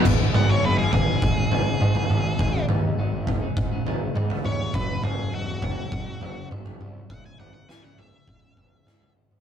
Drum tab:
CC |x---------------|----------------|----------------|----------------|
SD |----------------|----------------|----------------|----o-------o---|
T2 |--o---------o-o-|--o---------o-o-|--o---------o-o-|------------o--o|
FT |o-o---o---o--o--|o-o---o---o--o--|o-o---o---o--o--|o-o---o---o--o--|
BD |o-----o-o-------|o-----o-o-------|o-----o-o-------|o-------o-o-----|